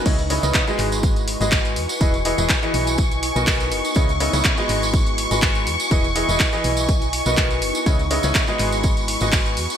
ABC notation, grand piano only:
X:1
M:4/4
L:1/16
Q:"Swing 16ths" 1/4=123
K:G#m
V:1 name="Grand piano"
[C,EBcd] z [C,EBcd] [C,EBcd]2 [G,FGBd]6 [G,FGBd]3 z2 | [E,EGBd] z [E,EGBd] [E,EGBd]2 [E,EGBd]3 z3 [B,FABd]4- [B,FABd] | [C,EBcd] z [C,EBcd] [C,EBcd]2 [G,FGBd]6 [G,FGBd]3 z2 | [E,EGBd] z [E,EGBd] [E,EGBd]2 [E,EGBd]3 z3 [B,FABd]4- [B,FABd] |
[C,EBcd] z [C,EBcd] [C,EBcd]2 [G,FGBd]6 [G,FGBd]3 z2 |]